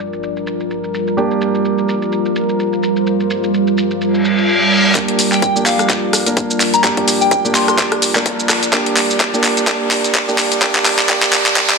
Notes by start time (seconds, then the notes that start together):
Already playing: G3 A#3 D4 F4 G4 A#4 D5
0.13 shaker
0.23 shaker
0.37 shaker
0.47 shaker
0.60 shaker
0.71 shaker
0.84 shaker
0.94 shaker
1.07 shaker
1.17 A#3 D4 G4, shaker
1.31 shaker
1.41 shaker
1.55 shaker
1.65 shaker
1.78 C5, shaker
1.89 shaker
2.02 shaker
2.12 shaker
2.26 shaker
2.36 shaker
2.49 shaker
2.60 shaker
2.73 shaker
2.83 shaker
2.96 shaker
3.07 shaker
3.20 shaker
3.30 shaker
3.44 shaker
3.54 shaker
3.67 shaker
3.78 shaker
3.91 shaker
4.01 reverse cymbal, shaker
4.14 shaker
4.25 shaker
4.38 shaker
4.49 shaker
4.62 shaker
4.72 shaker
4.85 shaker
4.95 A#3 D4 G4, kick, clap, closed hi-hat, riser, shaker
5.08 closed hi-hat
5.19 open hi-hat, shaker
5.32 G5, clap, shaker
5.42 G5, kick, closed hi-hat, shaker
5.56 A#3 D4 G4, shaker
5.66 F5, clap, open hi-hat, shaker
5.79 cross-stick, closed hi-hat, shaker
5.90 kick, clap, closed hi-hat, shaker
6.13 D5, cross-stick, open hi-hat, shaker
6.26 A#3 D4 A#4, closed hi-hat, shaker
6.37 kick, closed hi-hat, shaker
6.51 shaker
6.60 clap, open hi-hat, shaker
6.74 A#5, closed hi-hat, shaker
6.84 A#3 D4 G4 A#5, kick, clap, closed hi-hat, shaker
6.97 kick, closed hi-hat
7.08 open hi-hat, shaker
7.21 G5, shaker
7.31 G5, kick, closed hi-hat, shaker
7.45 A#3 D4 G4, shaker
7.55 C6, clap, open hi-hat, shaker
7.68 C6, cross-stick, closed hi-hat, shaker
7.79 kick, clap, closed hi-hat, shaker
7.92 cross-stick, closed hi-hat
8.02 open hi-hat, shaker
8.15 A#3 D4 A#4, clap, closed hi-hat, shaker
8.26 kick, closed hi-hat, shaker
8.40 shaker
8.49 cross-stick, clap, open hi-hat, shaker
8.63 closed hi-hat, shaker
8.73 A#3 D4 G4, kick, clap, closed hi-hat, shaker
8.86 closed hi-hat
8.97 clap, open hi-hat, shaker
9.11 shaker
9.20 kick, clap, closed hi-hat, shaker
9.33 A#3 D4 G4, shaker
9.44 clap, open hi-hat, shaker
9.57 closed hi-hat, shaker
9.67 G4, kick, clap, closed hi-hat, shaker
9.88 C5, clap, open hi-hat, shaker
10.04 closed hi-hat, shaker
10.15 kick, clap, closed hi-hat, shaker
10.28 A#3 D4 G4, shaker
10.38 clap, open hi-hat, shaker
10.52 closed hi-hat, shaker
10.62 A#3 G4, kick, clap, closed hi-hat, shaker
10.75 kick, clap, closed hi-hat
10.86 clap, open hi-hat, shaker
10.99 clap, shaker
11.09 A#3 D4 G4, kick, clap, closed hi-hat, shaker
11.23 clap, shaker
11.33 clap, open hi-hat, shaker
11.46 clap, closed hi-hat, shaker
11.56 A#3 D4 G4, kick, clap, closed hi-hat, shaker
11.70 clap, closed hi-hat